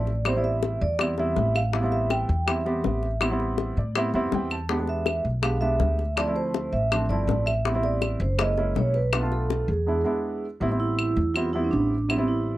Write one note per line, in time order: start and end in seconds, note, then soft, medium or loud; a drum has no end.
0.00 0.76 A1 medium
0.00 0.28 D5 medium
0.07 high bongo soft
0.25 0.32 G3 medium
0.25 0.32 B3 medium
0.25 0.33 C4 medium
0.25 0.33 E4 medium
0.25 0.38 C5 medium
0.25 high bongo medium
0.25 claves medium
0.35 0.80 G3 medium
0.35 0.81 B3 medium
0.35 0.81 C4 medium
0.35 0.81 E4 medium
0.35 0.45 D5 medium
0.44 0.79 E5 medium
0.44 high bongo soft
0.63 high bongo medium
0.81 1.33 E2 medium
0.81 1.19 D5 medium
0.99 1.12 G3 medium
0.99 1.13 B3 medium
0.99 1.13 C4 medium
0.99 1.13 E4 medium
0.99 high bongo medium
0.99 claves medium
1.18 1.57 G3 medium
1.18 1.57 B3 medium
1.18 1.57 C4 medium
1.18 1.58 E4 medium
1.18 1.57 E5 medium
1.18 high bongo soft
1.36 2.23 A1 medium
1.36 high bongo soft
1.36 low bongo medium
1.55 1.93 F5 loud
1.55 high bongo soft
1.55 claves medium
1.72 1.79 G3 medium
1.72 1.80 B3 medium
1.72 1.80 C4 medium
1.72 1.80 E4 medium
1.72 high bongo medium
1.82 2.28 G3 medium
1.82 2.28 B3 medium
1.82 2.28 C4 medium
1.82 2.29 E4 medium
1.92 2.11 E5 medium
1.92 high bongo soft
2.10 2.49 G5 medium
2.10 high bongo medium
2.10 claves medium
2.29 2.81 E2 medium
2.46 2.60 G3 medium
2.46 2.60 B3 medium
2.46 2.60 C4 medium
2.46 2.61 E4 medium
2.46 3.18 E5 medium
2.46 high bongo medium
2.46 claves medium
2.65 3.04 G3 medium
2.65 3.05 B3 medium
2.65 3.05 C4 medium
2.65 3.05 G4 medium
2.65 high bongo soft
2.84 3.71 A1 medium
2.84 high bongo soft
2.84 low bongo medium
3.03 high bongo soft
3.21 3.27 G3 medium
3.21 3.28 B3 medium
3.21 3.28 C4 medium
3.21 3.28 E4 medium
3.21 high bongo medium
3.21 claves medium
3.30 3.76 G3 medium
3.30 3.76 B3 medium
3.30 3.76 C4 medium
3.30 3.77 E4 medium
3.40 high bongo soft
3.58 high bongo medium
3.77 4.11 A2 medium
3.77 3.95 D5 medium
3.95 4.08 G3 medium
3.95 4.09 B3 medium
3.95 4.09 C4 medium
3.95 4.09 E4 medium
3.95 4.13 E5 medium
3.95 high bongo medium
3.95 claves medium
4.14 4.31 F2 medium
4.14 4.53 G3 medium
4.14 4.53 B3 medium
4.14 4.53 C4 medium
4.14 4.53 E4 medium
4.14 4.32 E5 medium
4.14 high bongo soft
4.32 5.19 E2 medium
4.32 4.51 G5 medium
4.32 high bongo soft
4.32 low bongo medium
4.51 4.69 A5 medium
4.51 high bongo soft
4.51 claves medium
4.69 4.76 G#3 medium
4.69 4.76 B3 medium
4.69 4.76 D4 medium
4.69 4.76 G4 medium
4.69 high bongo medium
4.79 5.24 G#3 medium
4.79 5.24 B3 medium
4.79 5.25 D4 medium
4.79 5.25 G4 medium
4.87 5.23 E5 loud
4.87 high bongo soft
5.06 high bongo medium
5.06 claves medium
5.25 5.76 B1 medium
5.42 5.56 G#3 medium
5.42 5.56 B3 medium
5.42 5.56 D4 medium
5.42 5.57 G4 medium
5.42 5.63 F5 medium
5.42 high bongo medium
5.42 claves medium
5.61 6.00 G#3 medium
5.61 6.01 B3 medium
5.61 6.01 D4 medium
5.61 6.01 G4 medium
5.61 6.13 E5 loud
5.61 high bongo soft
5.79 6.67 D2 medium
5.79 high bongo soft
5.79 low bongo medium
5.99 high bongo soft
6.16 6.23 F3 medium
6.16 6.24 A3 medium
6.16 6.24 C4 medium
6.16 6.24 E4 medium
6.16 6.35 D5 medium
6.16 high bongo medium
6.16 claves medium
6.26 6.72 F3 medium
6.26 6.72 A3 medium
6.26 6.72 C4 medium
6.26 6.73 E4 medium
6.36 6.74 C5 medium
6.36 high bongo soft
6.54 high bongo medium
6.72 7.07 A1 medium
6.72 7.11 E5 medium
6.91 7.04 F3 medium
6.91 7.04 A3 medium
6.91 7.05 C4 medium
6.91 7.05 D4 medium
6.91 high bongo medium
6.91 claves medium
7.09 7.27 G1 medium
7.09 7.49 F3 medium
7.09 7.49 A3 medium
7.09 7.49 C4 medium
7.09 7.50 E4 medium
7.09 7.48 D5 medium
7.09 high bongo soft
7.27 8.15 A1 medium
7.27 high bongo soft
7.27 low bongo medium
7.46 7.85 E5 loud
7.46 high bongo soft
7.46 claves medium
7.65 7.72 G3 medium
7.65 7.72 B3 medium
7.65 7.72 C4 medium
7.65 7.72 E4 medium
7.65 high bongo medium
7.73 8.19 G3 medium
7.73 8.20 B3 medium
7.73 8.20 C4 medium
7.73 8.20 E4 medium
7.83 8.18 D5 medium
7.83 high bongo soft
8.02 high bongo soft
8.02 claves medium
8.20 8.72 F#1 medium
8.20 8.40 C5 medium
8.38 8.52 G#3 medium
8.38 8.52 A#3 medium
8.38 8.52 C#4 medium
8.38 8.53 E4 medium
8.38 8.77 D#5 medium
8.38 high bongo medium
8.38 claves medium
8.57 8.96 G#3 medium
8.57 8.97 A#3 medium
8.57 8.97 C#4 medium
8.57 8.97 E4 medium
8.57 high bongo soft
8.75 9.63 B1 medium
8.75 8.85 C#5 medium
8.75 high bongo soft
8.75 low bongo medium
8.94 9.33 B4 medium
8.94 high bongo soft
9.13 9.19 A3 medium
9.13 9.20 B3 medium
9.13 9.20 D4 medium
9.13 9.20 F4 medium
9.13 high bongo medium
9.13 claves medium
9.21 9.67 A3 medium
9.21 9.68 B3 medium
9.21 9.68 D4 medium
9.21 9.68 F4 medium
9.32 9.67 A4 medium
9.32 high bongo soft
9.50 high bongo medium
9.68 10.03 E2 medium
9.68 10.39 G#4 medium
9.86 10.00 G#3 medium
9.86 10.00 B3 medium
9.86 10.01 D4 medium
9.86 10.01 E4 medium
10.04 10.44 G#3 medium
10.04 10.44 B3 medium
10.04 10.45 D4 medium
10.04 10.45 E4 medium
10.60 11.13 A1 medium
10.60 10.67 G3 medium
10.60 10.68 B3 medium
10.60 10.68 C4 medium
10.60 10.68 E4 medium
10.70 11.16 G3 medium
10.70 11.16 B3 medium
10.70 11.16 C4 medium
10.70 11.17 E4 medium
10.80 11.32 E4 medium
10.99 claves medium
11.16 11.68 E2 medium
11.34 11.48 G3 medium
11.34 11.49 B3 medium
11.34 11.49 C4 medium
11.34 11.49 E4 medium
11.34 11.43 F4 medium
11.34 claves medium
11.53 11.93 G3 medium
11.53 11.93 B3 medium
11.53 11.93 C4 medium
11.53 11.58 E4 loud
11.53 11.94 E4 medium
11.64 11.72 C#4 medium
11.71 12.58 A1 medium
11.71 12.10 D4 loud
12.08 12.15 G3 medium
12.08 12.16 B3 medium
12.08 12.28 C4 medium
12.08 12.16 C4 medium
12.08 12.16 E4 medium
12.08 claves medium
12.17 12.58 G3 medium
12.17 12.58 B3 medium
12.17 12.58 C4 medium
12.17 12.58 E4 medium
12.28 12.58 E4 medium